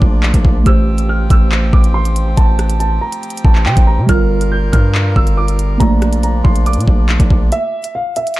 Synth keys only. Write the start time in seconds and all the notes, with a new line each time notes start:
Already playing: A3 A#3 D5
0.64 A3 G4
0.69 C5
4.06 G3 F4
4.11 A#4
5.78 A3 A#3
5.83 D5